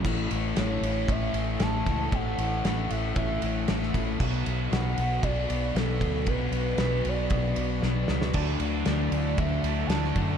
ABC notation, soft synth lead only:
X:1
M:4/4
L:1/8
Q:1/4=116
K:A
V:1 name="Soft synth lead"
z2 c2 e2 a2 | f3 e e3 z | z2 f2 d2 A2 | B3 d d3 z |
z2 d2 e2 a2 |]